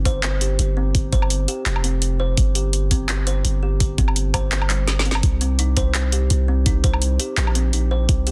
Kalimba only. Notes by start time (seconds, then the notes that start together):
0.05 C5
0.41 G4
0.77 C4
1.13 C5
1.48 G4
1.84 C4
2.20 C5
2.55 G4
2.91 C4
3.27 C5
3.63 G4
3.98 C4
4.34 C5
4.70 G3
5.05 C4
5.41 C4
5.59 D#4
5.77 C5
6.13 G4
6.48 C4
6.66 D#4
6.84 C5
7.20 G4
7.56 C4
7.73 D#4
7.91 C5
8.27 G4